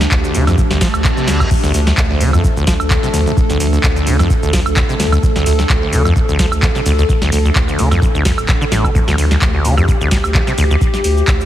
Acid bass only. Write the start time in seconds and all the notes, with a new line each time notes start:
0.01 D2
0.24 D2
0.34 D3
0.47 F2
0.58 F2
0.70 D2
0.81 F3
1.04 D2
1.17 C3
1.27 D3
1.40 D2
1.51 D2
1.63 D2
1.74 D2
1.87 D2
2.10 D2
2.21 D3
2.33 F2
2.44 F2
2.57 D2
2.67 F3
2.90 D2
3.03 C3
3.14 D2
3.26 D2
3.37 D2
3.50 D2
3.60 D2
3.73 D2
3.96 D2
4.07 D3
4.19 F2
4.30 F2
4.43 D2
4.53 F3
4.76 D2
4.89 C3
5.00 D2
5.12 D2
5.23 D2
5.36 D2
5.46 D2
5.59 D2
5.82 D2
5.93 D3
6.05 F2
6.29 D2
6.39 F3
6.62 D2
6.75 C3
6.86 D2
6.98 D2
7.09 D2
7.22 D2
7.32 D2
7.45 D2
7.68 D2
7.79 D3
7.91 F2
8.15 D2
8.48 D2
8.61 D3
8.72 A2
8.84 C3
8.95 D2
9.08 D2
9.18 D2
9.31 D2
9.54 D2
9.65 D3
9.77 F2
10.01 D2
10.35 D2
10.47 C3
10.58 D2
10.71 D2